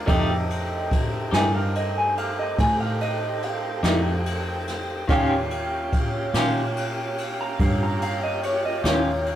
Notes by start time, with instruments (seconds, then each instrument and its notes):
Already playing: clean electric guitar F5
0.05 fingered electric bass F2, clean electric guitar F3 A3 D#4 G4, saxophone section A3 D#4 G4, tonewheel organ A3 C4 D#4 G4, upright piano G4 A4 D#5, kick, ride
0.50 ride
0.91 kick, ride
1.31 fingered electric bass G2, clean electric guitar F3 A3 D#4 G4 G#5, snare, ride
1.55 clean electric guitar F5
1.75 clean electric guitar D#5, ride
1.98 clean electric guitar G#5
2.17 clean electric guitar F5, ride
2.39 clean electric guitar D#5
2.58 fingered electric bass A2, clean electric guitar G#5, kick, ride
2.80 clean electric guitar F5
3.01 clean electric guitar D#5, ride
3.43 clean electric guitar F5, ride
3.83 fingered electric bass F2, clean electric guitar F3 A3 D#4 G4, snare, ride
4.26 ride
4.68 snare, ride
5.07 fingered electric bass D#2, tonewheel organ D3 G#3 B3 F4, clean electric guitar D#3 C#4 F4 G4, saxophone section C#4 F4, upright piano G4 C#5 F5, kick, ride
5.51 tonewheel organ A#3 C#4 F4 G4, ride
5.93 kick, ride
6.34 fingered electric bass A#2, clean electric guitar D#3 C#4 F4 G4, snare, ride
6.77 ride
7.18 ride
7.41 clean electric guitar A#5
7.59 fingered electric bass G2, clean electric guitar F5, kick, ride
7.83 clean electric guitar A#5
8.02 clean electric guitar F5, ride
8.23 clean electric guitar D#5
8.43 clean electric guitar C#5, ride
8.65 clean electric guitar D#5
8.84 fingered electric bass D#2, clean electric guitar D#3 C#4 F4 G4 C#5, snare, ride
9.26 ride